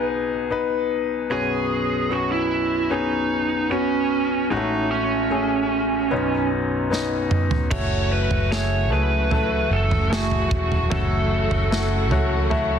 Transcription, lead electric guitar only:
1.32 2.14 G#4 medium
2.12 2.31 F#4 medium
2.32 2.93 E4 medium
2.91 3.71 D#4 medium
3.72 4.51 C#4 medium
4.51 4.91 D#4 medium
4.91 6.47 C#4 medium
7.72 8.12 C#5 medium
8.12 8.52 B4 medium
8.52 8.92 C#5 medium
8.92 9.74 B4 medium
9.73 10.13 A4 medium
10.14 10.92 F#4 medium
10.92 12.48 A4 medium

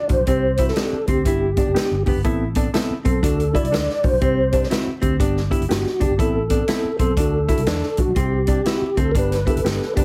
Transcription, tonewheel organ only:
0.11 0.27 C5 medium
0.28 0.69 C5 medium
0.69 1.06 A4 medium
1.09 2.03 G4 medium
3.07 3.56 A4 medium
3.55 4.05 D5 loud
4.04 4.67 C5 loud
5.72 6.03 F#4 medium
6.02 6.18 G4 medium
6.21 6.97 A4 medium
7.01 8.02 A4 medium
8.00 8.16 F#4 medium
8.18 9.00 G4 medium
8.99 9.11 A4 medium
9.12 9.16 A#4 medium
9.19 9.94 B4 loud
9.50 9.94 A4 medium
9.99 10.05 B4 medium

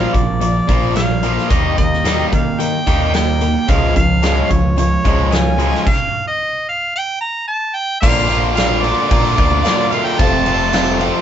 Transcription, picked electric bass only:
0.14 0.59 A#1 medium
0.69 1.37 A#1 medium
1.51 1.73 D#2 medium
1.79 2.24 D#2 medium
2.33 2.78 D#3 medium
2.87 3.55 D#2 medium
3.69 3.91 C#2 medium
3.96 4.41 C#2 medium
4.51 4.96 C#2 medium
5.05 5.73 C#2 medium
8.03 8.92 A#1 medium
9.11 9.34 A#2 medium
9.38 9.61 D2 medium
10.19 11.09 F1 medium

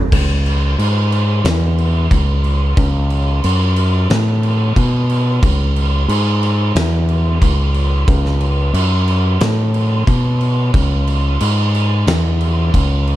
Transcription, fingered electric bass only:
0.12 0.75 C#2 loud
0.78 1.41 G#2 medium
1.44 2.07 E2 loud
2.11 2.73 C#2 medium
2.77 3.40 C#2 loud
3.44 4.06 F#2 loud
4.10 4.72 A2 loud
4.76 5.39 B2 medium
5.43 6.05 C#2 loud
6.08 6.71 G#2 loud
6.75 7.38 E2 loud
7.42 8.04 C#2 medium
8.08 8.71 C#2 loud
8.73 9.36 F#2 loud
9.41 10.03 A2 medium
10.07 10.70 B2 medium
10.74 11.37 C#2 loud
11.41 12.03 G#2 loud
12.07 12.69 E2 medium
12.74 13.16 C#2 loud

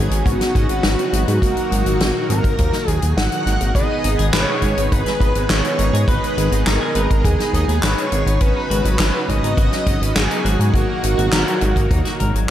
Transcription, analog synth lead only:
0.00 0.25 G#4 medium
0.26 1.38 F#4 loud
1.43 2.26 F#4 loud
2.30 2.90 A#4 loud
2.90 3.13 G#4 loud
3.17 3.71 F#5 loud
3.75 4.29 D#5 loud
4.33 4.93 C#5 loud
4.92 5.50 B4 loud
5.50 6.04 C#5 loud
6.08 6.68 B4 loud
6.67 7.24 A#4 loud
7.25 7.85 G#4 loud
7.83 8.43 C#5 loud
8.41 9.30 B4 loud
9.29 10.16 D#5 loud
10.16 10.70 G#4 medium
10.74 12.45 F#4 loud

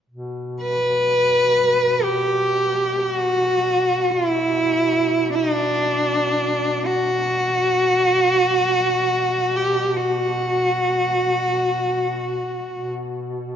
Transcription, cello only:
0.62 2.05 B4 medium
2.04 3.00 G4 medium
3.00 3.12 G4 medium
3.12 4.11 F#4 medium
4.10 4.29 F4 medium
4.29 5.34 E4 medium
5.35 5.53 D#4 medium
5.53 6.87 D4 medium
6.86 9.58 F#4 medium
9.56 9.97 G4 medium
9.96 12.88 F#4 medium

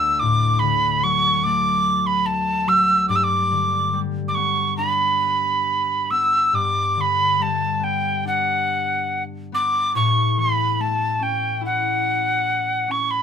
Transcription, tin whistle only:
0.00 0.21 E6 medium
0.20 0.61 D6 medium
0.59 1.05 B5 medium
1.04 1.45 C#6 medium
1.44 2.08 D6 medium
2.07 2.28 B5 medium
2.26 2.70 A5 medium
2.68 3.09 E6 medium
3.09 3.17 D6 medium
3.16 3.25 E6 medium
3.24 4.00 D6 medium
4.28 4.36 D6 medium
4.35 4.77 C#6 medium
4.77 6.12 B5 medium
6.11 6.56 E6 medium
6.55 7.02 D6 medium
7.01 7.44 B5 medium
7.42 7.85 A5 medium
7.84 8.25 G5 medium
8.27 9.23 F#5 medium
9.54 9.93 D6 medium
9.95 10.41 C#6 medium
10.39 10.82 B5 medium
10.81 11.24 A5 medium
11.23 11.63 G5 medium
11.66 12.93 F#5 medium
12.91 13.12 C#6 medium
13.11 13.23 B5 medium

